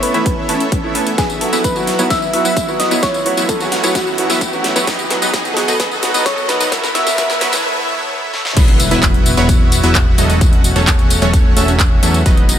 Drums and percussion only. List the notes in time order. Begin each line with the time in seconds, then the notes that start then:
0.03 open hi-hat
0.14 closed hi-hat
0.26 kick, closed hi-hat
0.49 open hi-hat
0.60 closed hi-hat
0.72 kick, closed hi-hat
0.95 open hi-hat
1.07 closed hi-hat
1.18 kick, snare, closed hi-hat, tambourine
1.30 closed hi-hat, tambourine
1.41 open hi-hat
1.53 snare, closed hi-hat, tambourine
1.64 kick, closed hi-hat, tambourine
1.76 closed hi-hat, tambourine
1.87 snare, open hi-hat
1.99 closed hi-hat, tambourine
2.10 kick, snare, closed hi-hat, tambourine
2.22 tambourine
2.33 open hi-hat
2.45 closed hi-hat, tambourine
2.57 kick, closed hi-hat, tambourine
2.68 tambourine
2.80 snare, open hi-hat
2.91 closed hi-hat, tambourine
3.03 kick, snare, closed hi-hat, tambourine
3.14 closed hi-hat, tambourine
3.26 open hi-hat
3.37 closed hi-hat, tambourine
3.49 kick, closed hi-hat, tambourine
3.60 closed hi-hat, tambourine
3.72 snare, open hi-hat
3.84 closed hi-hat, tambourine
3.95 kick, snare, closed hi-hat, tambourine
4.07 tambourine
4.18 open hi-hat
4.30 snare, closed hi-hat, tambourine
4.41 kick, closed hi-hat, tambourine
4.53 tambourine
4.64 snare, open hi-hat
4.76 closed hi-hat, tambourine
4.87 kick, snare, closed hi-hat, tambourine
4.99 closed hi-hat, tambourine
5.10 snare, open hi-hat
5.22 closed hi-hat, tambourine
5.33 kick, snare, closed hi-hat, tambourine
5.45 closed hi-hat, tambourine
5.57 snare, open hi-hat
5.68 closed hi-hat, tambourine
5.80 kick, snare, closed hi-hat, tambourine
5.91 tambourine
6.03 snare, open hi-hat
6.14 closed hi-hat, tambourine
6.26 kick, snare, closed hi-hat, tambourine
6.38 tambourine
6.49 snare, open hi-hat
6.60 closed hi-hat, tambourine
6.72 kick, snare, closed hi-hat, tambourine
6.84 snare, closed hi-hat, tambourine
6.95 snare, open hi-hat
7.07 snare, closed hi-hat, tambourine
7.18 kick, snare, closed hi-hat, tambourine
7.30 snare, closed hi-hat, tambourine
7.41 snare, open hi-hat
7.53 snare, open hi-hat, tambourine
8.33 snare
8.45 snare
8.57 kick, closed hi-hat, crash, tambourine
8.68 closed hi-hat
8.80 open hi-hat, tambourine
8.91 closed hi-hat, tambourine
9.03 kick, clap, closed hi-hat, tambourine
9.14 closed hi-hat
9.26 open hi-hat, tambourine
9.37 closed hi-hat, tambourine
9.49 kick, closed hi-hat, tambourine
9.72 open hi-hat, tambourine
9.83 closed hi-hat, tambourine
9.95 kick, clap, closed hi-hat, tambourine
10.18 open hi-hat, tambourine
10.30 closed hi-hat, tambourine
10.41 kick, closed hi-hat, tambourine
10.53 closed hi-hat
10.64 open hi-hat, tambourine
10.76 closed hi-hat, tambourine
10.87 kick, clap, closed hi-hat, tambourine
10.99 closed hi-hat
11.10 open hi-hat, tambourine
11.22 closed hi-hat, tambourine
11.34 kick, closed hi-hat, tambourine
11.57 open hi-hat, tambourine
11.68 closed hi-hat, tambourine
11.80 kick, clap, closed hi-hat, tambourine
12.03 open hi-hat, tambourine
12.14 closed hi-hat, tambourine
12.26 kick, closed hi-hat, tambourine
12.37 closed hi-hat
12.49 open hi-hat, tambourine